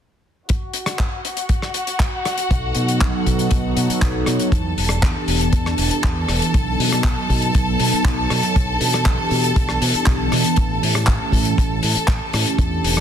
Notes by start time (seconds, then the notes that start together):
0.48 F#4 F#5, kick, closed hi-hat
0.74 closed hi-hat
0.86 cross-stick, closed hi-hat
0.99 kick, clap, closed hi-hat
1.25 closed hi-hat
1.37 closed hi-hat
1.49 kick, closed hi-hat
1.62 cross-stick
1.74 closed hi-hat
1.87 closed hi-hat
2.00 kick, clap, closed hi-hat
2.25 cross-stick, closed hi-hat
2.38 closed hi-hat
2.50 B1 F#3 B3 D#4 A4, kick, closed hi-hat
2.75 B2, closed hi-hat
2.88 F#3 B3 D#4 A4, closed hi-hat
3.00 B1, kick, clap, closed hi-hat
3.13 F#3 B3 D#4 A4
3.26 B2, kick, closed hi-hat
3.39 closed hi-hat
3.51 B1 F#3 B3 D#4 B4, kick, closed hi-hat
3.76 B2 F#3 B3 D#4 A4, closed hi-hat
3.90 muted fingered electric bass stroke, closed hi-hat
4.02 B1, kick, clap
4.14 F#3 B3 D#4 C#5
4.26 B2, cross-stick, closed hi-hat
4.39 closed hi-hat
4.52 E2 E3 B3 D4 G4 A4 A5, kick, closed hi-hat
4.78 E1, open hi-hat
4.89 E3 B3 D4 G4, cross-stick, closed hi-hat
5.03 E2, kick, clap, closed hi-hat
5.15 E3 B3 D4 G4
5.28 E1, open hi-hat
5.41 closed hi-hat
5.53 E2 E3 B3 D4 A4, kick, closed hi-hat
5.66 cross-stick
5.78 E1 E3 B3 D4 G4, open hi-hat
5.91 muted fingered electric bass stroke, closed hi-hat
6.03 E2, kick, clap, closed hi-hat
6.16 E3 B3 D4 B4
6.28 E1, cross-stick, open hi-hat
6.42 closed hi-hat
6.54 B1 F#3 B3 D#4 A4, kick, closed hi-hat
6.79 B2, open hi-hat
6.92 F#3 B3 D#4 A4, cross-stick, closed hi-hat
7.04 B1, kick, clap, closed hi-hat
7.17 F#3 B3 D#4 A4
7.30 B2, kick, open hi-hat
7.42 closed hi-hat
7.54 B1 F#3 B3 D#4 B4, kick, closed hi-hat
7.79 B2 F#3 B3 D#4 A4, open hi-hat
7.93 muted fingered electric bass stroke, closed hi-hat
8.05 B1, kick, clap, closed hi-hat
8.17 F#3 B3 D#4 C#5
8.30 B2, cross-stick, open hi-hat
8.43 closed hi-hat
8.55 B1 E3 B3 D4 G4, kick, closed hi-hat
8.81 B2, open hi-hat
8.93 E3 B3 D4 G4, cross-stick, closed hi-hat
9.06 B1, kick, clap, closed hi-hat
9.18 E3 B3 D4 G4
9.31 B2, open hi-hat
9.44 closed hi-hat
9.56 B1 E3 B3 D4 A4, kick, closed hi-hat
9.69 cross-stick
9.81 B2 E3 B3 D4 G4, open hi-hat
9.94 muted fingered electric bass stroke, closed hi-hat
10.06 B1, kick, clap, closed hi-hat
10.19 E3 B3 D4 B4
10.32 B2, cross-stick, open hi-hat
10.44 closed hi-hat
10.56 A1 E3 A3 C#4 G4, kick, closed hi-hat
10.82 A2, open hi-hat
10.95 E3 A3 C#4 G4, cross-stick, closed hi-hat
11.07 A1, kick, clap, closed hi-hat
11.20 E3 A3 C#4 G4
11.32 A2, kick, open hi-hat
11.45 closed hi-hat
11.58 A1 E3 A3 C#4 A4, kick, closed hi-hat
11.83 A2, open hi-hat
11.96 muted fingered electric bass stroke, closed hi-hat
12.08 A1, kick, clap, closed hi-hat
12.21 E3 A3 C#4 G4
12.33 A2, cross-stick, open hi-hat
12.47 closed hi-hat
12.58 E2 E3 B3 D4 G4 A4 A5, kick, closed hi-hat
12.84 E1, open hi-hat
12.96 E3 B3 D4 G4, cross-stick, closed hi-hat